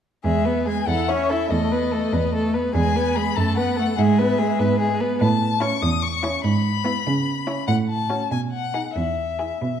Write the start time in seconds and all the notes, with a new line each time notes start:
0.24 E2 G#3 G#4 E5
0.45 B3 B4
0.66 G#3 G#4 G#5
0.87 E2 E4 A4 F#5
1.08 C#4 C#5 E5
1.30 E4 A4
1.50 E2 A3 A4 D#5
1.72 B3 B4
1.92 A3 A4
2.13 E2 B3 B4
2.34 A3 A4
2.54 B3 B4
2.74 E2 G#3 G#4 G#5
2.96 B3 B4
3.16 G#3 G#4 B5
3.36 F#2 A3 A4 A5
3.57 B3 B4 F#5
3.77 A3 A4
3.98 G#2 G#3 G#4 E5
4.19 B3 B4
4.39 G#3 G#4
4.59 G#2 B3 B4
4.80 G#3 G#4
5.00 B3 B4
5.21 A2 A5
5.61 C#4 E4 C#6
5.82 E2 D#6
6.02 C#6
6.23 C#4 E4
6.44 G#2 B5
6.84 B3 E4
7.07 C#3
7.47 C#4 E4
7.67 A2 F#5
7.89 A5
8.10 C#4 F#4
8.31 B2 G#5
8.52 F#5
8.74 D#4 G#4
8.95 E2 E5
9.39 E4 G#4
9.61 B2